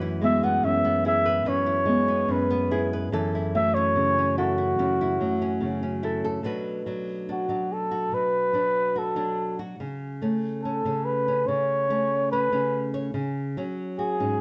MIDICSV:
0, 0, Header, 1, 4, 480
1, 0, Start_track
1, 0, Tempo, 828729
1, 1808, Time_signature, 4, 2, 24, 8
1, 2770, Tempo, 835655
1, 8299, End_track
2, 0, Start_track
2, 0, Title_t, "Flugelhorn"
2, 0, Program_c, 0, 56
2, 142, Note_on_c, 0, 76, 86
2, 256, Note_on_c, 0, 78, 82
2, 265, Note_off_c, 0, 76, 0
2, 374, Note_on_c, 0, 76, 93
2, 383, Note_off_c, 0, 78, 0
2, 611, Note_off_c, 0, 76, 0
2, 619, Note_on_c, 0, 76, 90
2, 859, Note_on_c, 0, 73, 83
2, 868, Note_off_c, 0, 76, 0
2, 1342, Note_on_c, 0, 71, 70
2, 1351, Note_off_c, 0, 73, 0
2, 1695, Note_off_c, 0, 71, 0
2, 2060, Note_on_c, 0, 76, 100
2, 2168, Note_on_c, 0, 73, 96
2, 2177, Note_off_c, 0, 76, 0
2, 2529, Note_off_c, 0, 73, 0
2, 2539, Note_on_c, 0, 66, 79
2, 3472, Note_off_c, 0, 66, 0
2, 4224, Note_on_c, 0, 66, 64
2, 4462, Note_on_c, 0, 69, 74
2, 4470, Note_off_c, 0, 66, 0
2, 4700, Note_on_c, 0, 71, 87
2, 4708, Note_off_c, 0, 69, 0
2, 5184, Note_on_c, 0, 69, 66
2, 5192, Note_off_c, 0, 71, 0
2, 5539, Note_off_c, 0, 69, 0
2, 6129, Note_on_c, 0, 69, 65
2, 6371, Note_on_c, 0, 71, 77
2, 6380, Note_off_c, 0, 69, 0
2, 6614, Note_on_c, 0, 73, 84
2, 6622, Note_off_c, 0, 71, 0
2, 7093, Note_off_c, 0, 73, 0
2, 7099, Note_on_c, 0, 71, 77
2, 7432, Note_off_c, 0, 71, 0
2, 8057, Note_on_c, 0, 68, 76
2, 8299, Note_off_c, 0, 68, 0
2, 8299, End_track
3, 0, Start_track
3, 0, Title_t, "Harp"
3, 0, Program_c, 1, 46
3, 0, Note_on_c, 1, 52, 70
3, 0, Note_on_c, 1, 57, 61
3, 0, Note_on_c, 1, 61, 61
3, 0, Note_on_c, 1, 66, 63
3, 133, Note_on_c, 1, 59, 55
3, 372, Note_off_c, 1, 61, 0
3, 374, Note_on_c, 1, 61, 54
3, 614, Note_on_c, 1, 68, 67
3, 649, Note_off_c, 1, 57, 0
3, 850, Note_off_c, 1, 61, 0
3, 852, Note_on_c, 1, 61, 54
3, 1067, Note_off_c, 1, 66, 0
3, 1089, Note_off_c, 1, 59, 0
3, 1091, Note_on_c, 1, 59, 53
3, 1332, Note_off_c, 1, 61, 0
3, 1334, Note_on_c, 1, 61, 58
3, 1571, Note_off_c, 1, 68, 0
3, 1573, Note_on_c, 1, 68, 66
3, 1806, Note_off_c, 1, 52, 0
3, 1813, Note_on_c, 1, 52, 64
3, 2056, Note_on_c, 1, 57, 53
3, 2090, Note_off_c, 1, 68, 0
3, 2291, Note_off_c, 1, 61, 0
3, 2293, Note_on_c, 1, 61, 50
3, 2537, Note_on_c, 1, 69, 66
3, 2776, Note_off_c, 1, 61, 0
3, 2779, Note_on_c, 1, 61, 51
3, 2889, Note_off_c, 1, 59, 0
3, 3015, Note_off_c, 1, 57, 0
3, 3017, Note_on_c, 1, 57, 53
3, 3250, Note_off_c, 1, 61, 0
3, 3252, Note_on_c, 1, 61, 51
3, 3491, Note_off_c, 1, 69, 0
3, 3494, Note_on_c, 1, 69, 66
3, 3760, Note_off_c, 1, 52, 0
3, 4755, Note_off_c, 1, 69, 0
3, 4917, Note_off_c, 1, 61, 0
3, 4929, Note_off_c, 1, 57, 0
3, 8299, End_track
4, 0, Start_track
4, 0, Title_t, "Nylon-string guitar"
4, 0, Program_c, 2, 24
4, 0, Note_on_c, 2, 42, 74
4, 0, Note_on_c, 2, 71, 70
4, 9, Note_on_c, 2, 64, 49
4, 124, Note_on_c, 2, 56, 56
4, 251, Note_on_c, 2, 59, 58
4, 360, Note_off_c, 2, 42, 0
4, 367, Note_on_c, 2, 42, 62
4, 484, Note_off_c, 2, 59, 0
4, 491, Note_on_c, 2, 59, 53
4, 605, Note_off_c, 2, 64, 0
4, 608, Note_on_c, 2, 64, 51
4, 720, Note_off_c, 2, 71, 0
4, 727, Note_on_c, 2, 71, 56
4, 834, Note_off_c, 2, 42, 0
4, 839, Note_off_c, 2, 71, 0
4, 841, Note_on_c, 2, 42, 59
4, 846, Note_on_c, 2, 71, 61
4, 956, Note_off_c, 2, 64, 0
4, 963, Note_on_c, 2, 64, 51
4, 1067, Note_off_c, 2, 56, 0
4, 1074, Note_on_c, 2, 56, 66
4, 1197, Note_off_c, 2, 59, 0
4, 1204, Note_on_c, 2, 59, 57
4, 1316, Note_off_c, 2, 42, 0
4, 1323, Note_on_c, 2, 42, 64
4, 1444, Note_off_c, 2, 59, 0
4, 1451, Note_on_c, 2, 59, 57
4, 1565, Note_off_c, 2, 64, 0
4, 1571, Note_on_c, 2, 64, 59
4, 1687, Note_off_c, 2, 71, 0
4, 1698, Note_on_c, 2, 71, 58
4, 1772, Note_off_c, 2, 56, 0
4, 1781, Note_off_c, 2, 64, 0
4, 1784, Note_off_c, 2, 71, 0
4, 1802, Note_off_c, 2, 42, 0
4, 1809, Note_off_c, 2, 59, 0
4, 1809, Note_on_c, 2, 42, 71
4, 1815, Note_on_c, 2, 69, 68
4, 1940, Note_on_c, 2, 64, 51
4, 2054, Note_on_c, 2, 54, 61
4, 2180, Note_on_c, 2, 61, 56
4, 2292, Note_on_c, 2, 49, 57
4, 2415, Note_off_c, 2, 61, 0
4, 2423, Note_on_c, 2, 61, 50
4, 2529, Note_off_c, 2, 64, 0
4, 2536, Note_on_c, 2, 64, 49
4, 2645, Note_off_c, 2, 64, 0
4, 2652, Note_on_c, 2, 64, 47
4, 2765, Note_off_c, 2, 42, 0
4, 2769, Note_off_c, 2, 64, 0
4, 2772, Note_on_c, 2, 42, 65
4, 2776, Note_on_c, 2, 64, 56
4, 2893, Note_off_c, 2, 64, 0
4, 2901, Note_on_c, 2, 64, 49
4, 3006, Note_off_c, 2, 54, 0
4, 3012, Note_off_c, 2, 49, 0
4, 3013, Note_on_c, 2, 54, 51
4, 3127, Note_off_c, 2, 61, 0
4, 3134, Note_on_c, 2, 61, 54
4, 3243, Note_on_c, 2, 49, 58
4, 3363, Note_off_c, 2, 61, 0
4, 3370, Note_on_c, 2, 61, 56
4, 3480, Note_off_c, 2, 64, 0
4, 3487, Note_on_c, 2, 64, 53
4, 3603, Note_off_c, 2, 69, 0
4, 3610, Note_on_c, 2, 69, 61
4, 3700, Note_off_c, 2, 64, 0
4, 3702, Note_off_c, 2, 61, 0
4, 3702, Note_off_c, 2, 69, 0
4, 3715, Note_off_c, 2, 42, 0
4, 3716, Note_off_c, 2, 54, 0
4, 3717, Note_on_c, 2, 47, 63
4, 3723, Note_on_c, 2, 54, 45
4, 3727, Note_off_c, 2, 49, 0
4, 3727, Note_on_c, 2, 62, 53
4, 3730, Note_on_c, 2, 66, 45
4, 3733, Note_on_c, 2, 71, 54
4, 3957, Note_off_c, 2, 54, 0
4, 3963, Note_off_c, 2, 62, 0
4, 3964, Note_on_c, 2, 54, 49
4, 3970, Note_on_c, 2, 62, 51
4, 4203, Note_off_c, 2, 62, 0
4, 4209, Note_on_c, 2, 62, 50
4, 4316, Note_off_c, 2, 54, 0
4, 4322, Note_off_c, 2, 62, 0
4, 4323, Note_on_c, 2, 54, 49
4, 4329, Note_on_c, 2, 62, 47
4, 4561, Note_off_c, 2, 66, 0
4, 4568, Note_on_c, 2, 66, 43
4, 4679, Note_off_c, 2, 47, 0
4, 4686, Note_on_c, 2, 47, 54
4, 4917, Note_off_c, 2, 54, 0
4, 4923, Note_off_c, 2, 62, 0
4, 4923, Note_on_c, 2, 54, 49
4, 4930, Note_on_c, 2, 62, 44
4, 5161, Note_off_c, 2, 66, 0
4, 5168, Note_on_c, 2, 66, 47
4, 5276, Note_off_c, 2, 54, 0
4, 5278, Note_off_c, 2, 62, 0
4, 5283, Note_on_c, 2, 54, 48
4, 5285, Note_on_c, 2, 62, 47
4, 5525, Note_off_c, 2, 66, 0
4, 5532, Note_on_c, 2, 66, 49
4, 5620, Note_off_c, 2, 54, 0
4, 5622, Note_off_c, 2, 62, 0
4, 5623, Note_off_c, 2, 47, 0
4, 5625, Note_off_c, 2, 66, 0
4, 5627, Note_off_c, 2, 71, 0
4, 5652, Note_on_c, 2, 49, 65
4, 5891, Note_on_c, 2, 57, 55
4, 5895, Note_on_c, 2, 61, 49
4, 6139, Note_off_c, 2, 61, 0
4, 6142, Note_on_c, 2, 61, 46
4, 6254, Note_off_c, 2, 49, 0
4, 6257, Note_on_c, 2, 49, 50
4, 6259, Note_off_c, 2, 61, 0
4, 6261, Note_on_c, 2, 61, 43
4, 6500, Note_off_c, 2, 61, 0
4, 6502, Note_on_c, 2, 61, 45
4, 6617, Note_off_c, 2, 49, 0
4, 6619, Note_on_c, 2, 49, 58
4, 6852, Note_off_c, 2, 57, 0
4, 6853, Note_off_c, 2, 61, 0
4, 6858, Note_on_c, 2, 57, 52
4, 6860, Note_on_c, 2, 61, 50
4, 7097, Note_off_c, 2, 61, 0
4, 7104, Note_on_c, 2, 61, 52
4, 7210, Note_off_c, 2, 49, 0
4, 7212, Note_off_c, 2, 61, 0
4, 7216, Note_on_c, 2, 49, 58
4, 7219, Note_on_c, 2, 61, 49
4, 7456, Note_on_c, 2, 73, 57
4, 7545, Note_off_c, 2, 73, 0
4, 7546, Note_off_c, 2, 57, 0
4, 7547, Note_off_c, 2, 61, 0
4, 7563, Note_off_c, 2, 49, 0
4, 7570, Note_on_c, 2, 49, 64
4, 7811, Note_off_c, 2, 49, 0
4, 7819, Note_on_c, 2, 54, 59
4, 7822, Note_on_c, 2, 61, 49
4, 8057, Note_on_c, 2, 66, 52
4, 8173, Note_off_c, 2, 61, 0
4, 8177, Note_on_c, 2, 44, 53
4, 8180, Note_on_c, 2, 61, 46
4, 8299, Note_off_c, 2, 44, 0
4, 8299, Note_off_c, 2, 54, 0
4, 8299, Note_off_c, 2, 61, 0
4, 8299, Note_off_c, 2, 66, 0
4, 8299, End_track
0, 0, End_of_file